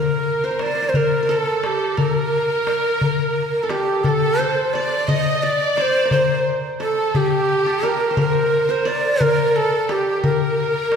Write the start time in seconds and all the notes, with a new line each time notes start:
Already playing: A#4
0.42 C5, darbuka ka
0.51 C5
0.59 C5 D5, darbuka tek
0.66 C5
0.75 C5
0.82 C5
0.89 C5
0.94 A#4, darbuka dum
1.23 A#4
1.29 A4
1.64 G4, darbuka tek
1.97 A4 A#4, darbuka dum
2.16 A#4
2.50 darbuka ka
2.67 darbuka tek
3.01 darbuka dum
3.63 A4
3.69 G4, darbuka tek
4.04 A4 A#4, darbuka dum
4.09 A4
4.39 C5
4.57 darbuka ka
4.73 D5, darbuka tek
5.08 D#5, darbuka dum
5.42 D5
5.76 C5 D5, darbuka tek
5.81 C5
6.05 A#4
6.11 C5, darbuka dum
6.46 darbuka ka
6.63 darbuka ka
6.79 A4, darbuka tek
7.14 G4, darbuka dum
7.66 A4
7.83 A#4, darbuka tek
8.11 C5
8.17 A#4, darbuka dum
8.69 C5, darbuka ka
8.85 D5, darbuka tek
9.20 A#4, darbuka dum
9.55 A4
9.89 G4, darbuka tek
10.23 A#4, darbuka dum
10.75 darbuka ka
10.92 darbuka tek